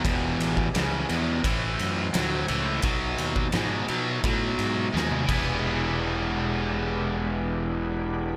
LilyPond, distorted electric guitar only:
\new Staff \with { instrumentName = "Distorted electric guitar" } { \clef bass \time 4/4 \key e \mixolydian \tempo 4 = 86 <e, b,>4 <e, cis>8 <e, b,>8 <a, e>4 <a, fis>8 <a, e>8 | <b, fis>4 <b, gis>8 <b, fis>8 <b, fis>4 <b, gis>8 <e gis b e'>8~ | <e gis b e'>1 | }